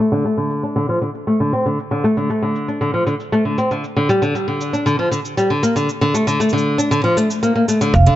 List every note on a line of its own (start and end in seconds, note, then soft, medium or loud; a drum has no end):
0.00 0.10 A3 medium
0.12 0.23 D3 medium
0.12 shaker soft
0.15 shaker soft
0.17 shaker soft
0.20 shaker soft
0.22 0.36 A3 medium
0.22 shaker soft
0.25 shaker soft
0.37 0.62 D3 medium
0.50 shaker medium
0.63 0.75 D4 medium
0.63 shaker soft
0.76 0.87 D3 medium
0.76 shaker soft
0.89 1.00 F3 medium
1.02 1.09 D3 medium
1.02 shaker medium
1.15 shaker soft
1.27 1.39 A3 medium
1.27 shaker soft
1.40 1.51 D3 medium
1.53 1.64 C4 medium
1.53 shaker medium
1.66 1.78 D3 medium
1.66 shaker soft
1.79 shaker soft
1.91 2.03 D3 medium
2.04 2.15 A3 medium
2.04 shaker medium
2.17 2.28 D3 medium
2.17 shaker soft
2.30 2.41 A3 medium
2.30 shaker soft
2.42 2.67 D3 medium
2.56 shaker medium
2.68 2.80 D4 medium
2.68 shaker soft
2.81 2.92 D3 medium
2.81 shaker soft
2.94 3.05 F3 medium
3.07 3.14 D3 medium
3.07 shaker medium
3.20 shaker soft
3.32 3.44 A3 medium
3.32 shaker soft
3.45 3.57 D3 medium
3.58 3.69 C4 medium
3.58 shaker medium
3.71 3.83 D3 medium
3.71 shaker soft
3.84 shaker soft
3.96 4.08 D3 medium
4.09 4.21 G3 medium
4.09 shaker medium
4.22 4.33 D3 medium
4.22 shaker soft
4.35 4.46 G3 medium
4.35 shaker soft
4.48 4.72 D3 medium
4.61 shaker medium
4.73 4.85 D4 medium
4.73 shaker soft
4.86 4.97 D3 medium
4.86 shaker soft
4.99 5.10 F3 medium
5.11 5.19 D3 medium
5.11 shaker medium
5.25 shaker soft
5.37 5.49 G3 medium
5.37 shaker soft
5.50 5.62 D3 medium
5.63 5.74 A#3 medium
5.63 shaker medium
5.76 5.88 D3 medium
5.76 shaker soft
5.89 shaker soft
6.01 6.13 D3 medium
6.14 6.26 A3 medium
6.14 shaker medium
6.27 6.39 D3 medium
6.27 shaker soft
6.40 6.51 A3 medium
6.40 shaker soft
6.49 6.77 D3 medium
6.49 shaker soft
6.58 shaker soft
6.78 6.90 D4 medium
6.78 shaker medium
6.91 7.03 D3 medium
6.91 shaker soft
7.04 7.15 F3 medium
7.17 7.28 A3 medium
7.17 shaker medium
7.30 shaker soft
7.43 7.54 A#3 medium
7.43 shaker soft
7.56 7.67 A#3 medium
7.68 7.80 A3 medium
7.68 shaker medium
7.81 7.92 D3 medium
7.81 shaker soft
7.94 8.05 F1 loud
7.94 8.01 F5 medium
7.94 kick loud
7.94 shaker soft
8.06 8.16 D3 medium
8.06 closed hi-hat soft